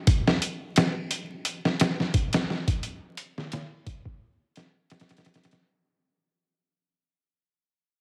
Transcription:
0, 0, Header, 1, 2, 480
1, 0, Start_track
1, 0, Tempo, 689655
1, 49, Time_signature, 4, 2, 24, 8
1, 5573, End_track
2, 0, Start_track
2, 0, Title_t, "Drums"
2, 50, Note_on_c, 9, 36, 102
2, 50, Note_on_c, 9, 42, 93
2, 119, Note_off_c, 9, 42, 0
2, 120, Note_off_c, 9, 36, 0
2, 192, Note_on_c, 9, 38, 59
2, 261, Note_off_c, 9, 38, 0
2, 292, Note_on_c, 9, 42, 69
2, 361, Note_off_c, 9, 42, 0
2, 529, Note_on_c, 9, 42, 91
2, 540, Note_on_c, 9, 38, 116
2, 599, Note_off_c, 9, 42, 0
2, 609, Note_off_c, 9, 38, 0
2, 770, Note_on_c, 9, 42, 72
2, 840, Note_off_c, 9, 42, 0
2, 1009, Note_on_c, 9, 42, 84
2, 1078, Note_off_c, 9, 42, 0
2, 1150, Note_on_c, 9, 38, 45
2, 1220, Note_off_c, 9, 38, 0
2, 1250, Note_on_c, 9, 42, 75
2, 1261, Note_on_c, 9, 38, 109
2, 1320, Note_off_c, 9, 42, 0
2, 1330, Note_off_c, 9, 38, 0
2, 1392, Note_on_c, 9, 38, 36
2, 1462, Note_off_c, 9, 38, 0
2, 1490, Note_on_c, 9, 36, 95
2, 1490, Note_on_c, 9, 42, 68
2, 1559, Note_off_c, 9, 42, 0
2, 1560, Note_off_c, 9, 36, 0
2, 1620, Note_on_c, 9, 42, 72
2, 1631, Note_on_c, 9, 38, 100
2, 1690, Note_off_c, 9, 42, 0
2, 1700, Note_off_c, 9, 38, 0
2, 1742, Note_on_c, 9, 38, 34
2, 1811, Note_off_c, 9, 38, 0
2, 1862, Note_on_c, 9, 36, 91
2, 1863, Note_on_c, 9, 42, 63
2, 1932, Note_off_c, 9, 36, 0
2, 1933, Note_off_c, 9, 42, 0
2, 1970, Note_on_c, 9, 42, 62
2, 2039, Note_off_c, 9, 42, 0
2, 2208, Note_on_c, 9, 42, 84
2, 2278, Note_off_c, 9, 42, 0
2, 2351, Note_on_c, 9, 38, 38
2, 2421, Note_off_c, 9, 38, 0
2, 2449, Note_on_c, 9, 42, 95
2, 2459, Note_on_c, 9, 38, 120
2, 2518, Note_off_c, 9, 42, 0
2, 2529, Note_off_c, 9, 38, 0
2, 2690, Note_on_c, 9, 36, 98
2, 2691, Note_on_c, 9, 42, 67
2, 2760, Note_off_c, 9, 36, 0
2, 2760, Note_off_c, 9, 42, 0
2, 2822, Note_on_c, 9, 36, 86
2, 2892, Note_off_c, 9, 36, 0
2, 3171, Note_on_c, 9, 42, 67
2, 3182, Note_on_c, 9, 38, 54
2, 3241, Note_off_c, 9, 42, 0
2, 3251, Note_off_c, 9, 38, 0
2, 3410, Note_on_c, 9, 42, 73
2, 3421, Note_on_c, 9, 38, 97
2, 3477, Note_off_c, 9, 42, 0
2, 3477, Note_on_c, 9, 42, 71
2, 3488, Note_off_c, 9, 38, 0
2, 3488, Note_on_c, 9, 38, 102
2, 3543, Note_off_c, 9, 42, 0
2, 3543, Note_on_c, 9, 42, 68
2, 3554, Note_off_c, 9, 38, 0
2, 3554, Note_on_c, 9, 38, 92
2, 3596, Note_off_c, 9, 42, 0
2, 3596, Note_on_c, 9, 42, 66
2, 3606, Note_off_c, 9, 38, 0
2, 3606, Note_on_c, 9, 38, 84
2, 3652, Note_off_c, 9, 42, 0
2, 3652, Note_on_c, 9, 42, 65
2, 3662, Note_off_c, 9, 38, 0
2, 3662, Note_on_c, 9, 38, 85
2, 3717, Note_off_c, 9, 42, 0
2, 3717, Note_on_c, 9, 42, 67
2, 3727, Note_off_c, 9, 38, 0
2, 3727, Note_on_c, 9, 38, 83
2, 3783, Note_off_c, 9, 42, 0
2, 3783, Note_on_c, 9, 42, 69
2, 3793, Note_off_c, 9, 38, 0
2, 3793, Note_on_c, 9, 38, 92
2, 3837, Note_off_c, 9, 42, 0
2, 3837, Note_on_c, 9, 42, 70
2, 3847, Note_off_c, 9, 38, 0
2, 3847, Note_on_c, 9, 38, 85
2, 3906, Note_off_c, 9, 42, 0
2, 3917, Note_off_c, 9, 38, 0
2, 5573, End_track
0, 0, End_of_file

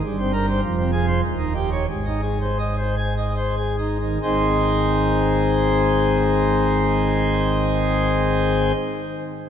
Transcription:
0, 0, Header, 1, 2, 480
1, 0, Start_track
1, 0, Key_signature, -4, "major"
1, 0, Tempo, 595829
1, 31, Time_signature, 3, 2, 24, 8
1, 992, Tempo, 655022
1, 1472, Tempo, 709220
1, 1952, Tempo, 770218
1, 2432, Tempo, 853485
1, 2912, Tempo, 887574
1, 5763, End_track
2, 0, Start_track
2, 0, Title_t, "Pipe organ"
2, 0, Program_c, 0, 19
2, 37, Note_on_c, 0, 31, 103
2, 37, Note_on_c, 0, 43, 99
2, 152, Note_on_c, 0, 60, 89
2, 253, Note_off_c, 0, 60, 0
2, 266, Note_on_c, 0, 70, 82
2, 369, Note_off_c, 0, 70, 0
2, 382, Note_on_c, 0, 72, 110
2, 482, Note_off_c, 0, 72, 0
2, 488, Note_off_c, 0, 43, 0
2, 489, Note_off_c, 0, 31, 0
2, 503, Note_on_c, 0, 29, 100
2, 503, Note_on_c, 0, 41, 100
2, 623, Note_on_c, 0, 60, 72
2, 731, Note_off_c, 0, 60, 0
2, 741, Note_on_c, 0, 68, 75
2, 853, Note_off_c, 0, 68, 0
2, 861, Note_on_c, 0, 72, 99
2, 970, Note_off_c, 0, 72, 0
2, 979, Note_off_c, 0, 29, 0
2, 979, Note_off_c, 0, 41, 0
2, 985, Note_on_c, 0, 39, 88
2, 987, Note_on_c, 0, 27, 94
2, 1104, Note_on_c, 0, 63, 64
2, 1212, Note_off_c, 0, 63, 0
2, 1221, Note_on_c, 0, 67, 67
2, 1332, Note_off_c, 0, 67, 0
2, 1345, Note_on_c, 0, 73, 98
2, 1452, Note_off_c, 0, 73, 0
2, 1454, Note_off_c, 0, 39, 0
2, 1455, Note_off_c, 0, 27, 0
2, 1467, Note_on_c, 0, 32, 94
2, 1467, Note_on_c, 0, 44, 89
2, 1584, Note_on_c, 0, 63, 69
2, 1692, Note_off_c, 0, 63, 0
2, 1698, Note_on_c, 0, 68, 73
2, 1810, Note_off_c, 0, 68, 0
2, 1827, Note_on_c, 0, 72, 72
2, 1937, Note_off_c, 0, 72, 0
2, 1947, Note_on_c, 0, 75, 67
2, 2053, Note_off_c, 0, 75, 0
2, 2064, Note_on_c, 0, 72, 75
2, 2171, Note_off_c, 0, 72, 0
2, 2186, Note_on_c, 0, 80, 95
2, 2294, Note_off_c, 0, 80, 0
2, 2310, Note_on_c, 0, 75, 79
2, 2420, Note_off_c, 0, 75, 0
2, 2433, Note_on_c, 0, 72, 76
2, 2536, Note_off_c, 0, 72, 0
2, 2547, Note_on_c, 0, 68, 62
2, 2653, Note_off_c, 0, 68, 0
2, 2667, Note_on_c, 0, 63, 60
2, 2775, Note_off_c, 0, 63, 0
2, 2788, Note_on_c, 0, 51, 60
2, 2888, Note_off_c, 0, 32, 0
2, 2888, Note_off_c, 0, 44, 0
2, 2894, Note_off_c, 0, 51, 0
2, 2913, Note_on_c, 0, 32, 71
2, 2914, Note_on_c, 0, 51, 64
2, 2914, Note_on_c, 0, 60, 58
2, 2914, Note_on_c, 0, 63, 64
2, 2915, Note_on_c, 0, 44, 74
2, 2915, Note_on_c, 0, 68, 64
2, 2916, Note_on_c, 0, 72, 58
2, 5344, Note_off_c, 0, 32, 0
2, 5345, Note_off_c, 0, 51, 0
2, 5345, Note_off_c, 0, 63, 0
2, 5346, Note_off_c, 0, 44, 0
2, 5346, Note_off_c, 0, 60, 0
2, 5346, Note_off_c, 0, 68, 0
2, 5347, Note_off_c, 0, 72, 0
2, 5763, End_track
0, 0, End_of_file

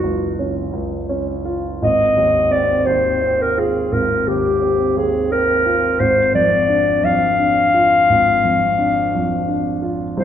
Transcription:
0, 0, Header, 1, 3, 480
1, 0, Start_track
1, 0, Tempo, 714286
1, 1219, Time_signature, 12, 3, 24, 8
1, 1220, Tempo, 696864
1, 7024, End_track
2, 0, Start_track
2, 0, Title_t, "Clarinet"
2, 0, Program_c, 0, 71
2, 0, Note_on_c, 0, 66, 51
2, 263, Note_off_c, 0, 66, 0
2, 1232, Note_on_c, 0, 75, 69
2, 1704, Note_on_c, 0, 74, 64
2, 1715, Note_off_c, 0, 75, 0
2, 1940, Note_on_c, 0, 72, 61
2, 1950, Note_off_c, 0, 74, 0
2, 2321, Note_on_c, 0, 70, 53
2, 2332, Note_off_c, 0, 72, 0
2, 2442, Note_on_c, 0, 68, 54
2, 2452, Note_off_c, 0, 70, 0
2, 2671, Note_on_c, 0, 70, 55
2, 2682, Note_off_c, 0, 68, 0
2, 2915, Note_on_c, 0, 67, 60
2, 2925, Note_off_c, 0, 70, 0
2, 3393, Note_on_c, 0, 68, 51
2, 3404, Note_off_c, 0, 67, 0
2, 3627, Note_off_c, 0, 68, 0
2, 3632, Note_on_c, 0, 70, 68
2, 4099, Note_on_c, 0, 72, 63
2, 4109, Note_off_c, 0, 70, 0
2, 4338, Note_off_c, 0, 72, 0
2, 4342, Note_on_c, 0, 74, 69
2, 4823, Note_on_c, 0, 77, 73
2, 4833, Note_off_c, 0, 74, 0
2, 6796, Note_off_c, 0, 77, 0
2, 6975, Note_on_c, 0, 72, 60
2, 7024, Note_off_c, 0, 72, 0
2, 7024, End_track
3, 0, Start_track
3, 0, Title_t, "Grand piano"
3, 0, Program_c, 1, 0
3, 0, Control_c, 1, 64, 127
3, 0, Note_on_c, 1, 30, 35
3, 0, Note_on_c, 1, 37, 31
3, 0, Note_on_c, 1, 61, 32
3, 0, Note_on_c, 1, 65, 29
3, 26, Note_off_c, 1, 37, 0
3, 26, Note_on_c, 1, 37, 30
3, 263, Note_off_c, 1, 61, 0
3, 263, Note_on_c, 1, 61, 35
3, 399, Note_off_c, 1, 37, 0
3, 491, Note_on_c, 1, 37, 35
3, 636, Note_off_c, 1, 61, 0
3, 735, Note_on_c, 1, 61, 37
3, 877, Note_off_c, 1, 37, 0
3, 976, Note_off_c, 1, 65, 0
3, 976, Note_on_c, 1, 65, 36
3, 1125, Note_off_c, 1, 61, 0
3, 1197, Note_off_c, 1, 30, 0
3, 1219, Note_off_c, 1, 65, 0
3, 1228, Note_on_c, 1, 32, 45
3, 1229, Control_c, 1, 64, 0
3, 1334, Control_c, 1, 64, 127
3, 1462, Note_on_c, 1, 39, 36
3, 1699, Note_on_c, 1, 60, 34
3, 1843, Note_off_c, 1, 39, 0
3, 1944, Note_on_c, 1, 39, 36
3, 2084, Note_off_c, 1, 60, 0
3, 2188, Note_on_c, 1, 60, 34
3, 2331, Note_off_c, 1, 39, 0
3, 2434, Note_on_c, 1, 65, 36
3, 2571, Note_off_c, 1, 60, 0
3, 2641, Note_off_c, 1, 32, 0
3, 2670, Note_on_c, 1, 32, 40
3, 2812, Note_off_c, 1, 65, 0
3, 2913, Note_on_c, 1, 39, 33
3, 3152, Note_on_c, 1, 60, 36
3, 3296, Note_off_c, 1, 39, 0
3, 3391, Note_on_c, 1, 39, 38
3, 3534, Note_off_c, 1, 60, 0
3, 3634, Note_on_c, 1, 60, 36
3, 3772, Note_off_c, 1, 39, 0
3, 3868, Note_on_c, 1, 65, 38
3, 4011, Note_off_c, 1, 60, 0
3, 4078, Note_off_c, 1, 32, 0
3, 4103, Note_on_c, 1, 32, 44
3, 4104, Note_off_c, 1, 65, 0
3, 4114, Control_c, 1, 64, 0
3, 4228, Control_c, 1, 64, 127
3, 4337, Note_on_c, 1, 41, 36
3, 4576, Note_on_c, 1, 62, 36
3, 4724, Note_off_c, 1, 41, 0
3, 4815, Note_on_c, 1, 41, 36
3, 4964, Note_off_c, 1, 62, 0
3, 5063, Note_on_c, 1, 62, 36
3, 5205, Note_off_c, 1, 41, 0
3, 5303, Note_on_c, 1, 65, 37
3, 5447, Note_off_c, 1, 62, 0
3, 5515, Note_off_c, 1, 32, 0
3, 5548, Note_on_c, 1, 32, 38
3, 5684, Note_off_c, 1, 65, 0
3, 5783, Note_on_c, 1, 41, 33
3, 6023, Note_on_c, 1, 62, 34
3, 6164, Note_off_c, 1, 41, 0
3, 6271, Note_on_c, 1, 41, 36
3, 6406, Note_off_c, 1, 62, 0
3, 6498, Note_on_c, 1, 62, 36
3, 6649, Note_off_c, 1, 41, 0
3, 6736, Note_on_c, 1, 65, 36
3, 6880, Note_off_c, 1, 62, 0
3, 6952, Note_off_c, 1, 32, 0
3, 6975, Note_off_c, 1, 65, 0
3, 6975, Note_on_c, 1, 36, 43
3, 6986, Control_c, 1, 64, 0
3, 7024, Note_off_c, 1, 36, 0
3, 7024, End_track
0, 0, End_of_file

